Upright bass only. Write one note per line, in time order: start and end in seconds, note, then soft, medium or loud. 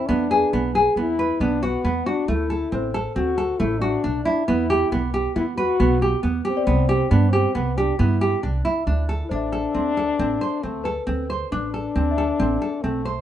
0.09 0.43 E2 medium
0.53 0.87 B1 medium
0.96 1.30 E2 medium
1.40 1.74 B1 medium
1.84 2.01 E2 medium
2.28 2.62 D2 medium
2.73 3.06 A1 medium
3.16 3.50 D2 medium
3.60 3.94 A1 medium
4.05 4.22 B1 medium
4.49 4.82 E2 medium
4.92 5.26 B1 medium
5.36 5.70 E2 medium
5.80 6.13 B1 medium
6.24 6.41 E2 medium
6.67 7.01 C2 medium
7.11 7.45 G2 medium
7.56 7.89 C2 medium
8.00 8.33 G2 loud
8.44 8.60 C2 medium
8.87 9.21 D2 medium
9.31 9.65 A1 medium
9.75 10.09 D2 medium
10.19 10.36 A1 medium
10.64 10.97 D2 medium
11.08 11.41 D2 medium
11.52 11.86 A1 medium
11.96 12.29 D2 medium
12.40 12.56 A1 medium
12.84 13.17 B1 medium